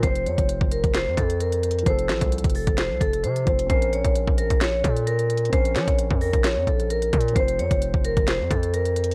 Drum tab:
HH |x-----x-----x-----x-----x-----------x-----x-----x-----------x-----x-----x-----x-----x---x---x---|x-----x-----x-----x-----x--x--x--x--o-----x-----x-----------x-----x-----x-----x-----x-----x-----|x-----x-----x-----x-----x-----------x-----x-----x-----------x-----x-----x-----x-----x---x---x---|x-----x-----x-----x-----x-----------o-----x-----x-----------x-----x-----x-----x-----x---x---x---|
SD |------------------------------------------------o-----------------------------------------------|------------o-----------------------------------o-----------------------------------------------|------------------------------------------------o-----------------------------------------------|------------o-----------------------------------o-----------------------------------------------|
BD |o-----------------o-----------o-----------o-----------------o-----------------------------------|o-----------------o-----------o-----------o-----------------o-----------------------o-----------|o-----------------o-----------o-----------o-----------------o-----------------------------------|o-----------------o-----------o-----------o-----------------o-----------------------o-----------|

HH |x-----x-----x-----x-----x-----------x-----x-----x-----------x-----x-----x-----x-----x---x---x---|
SD |------------------------------------------------o-----------------------------------------------|
BD |o-----------------o-----------o-----------o-----------------o-----------------------------------|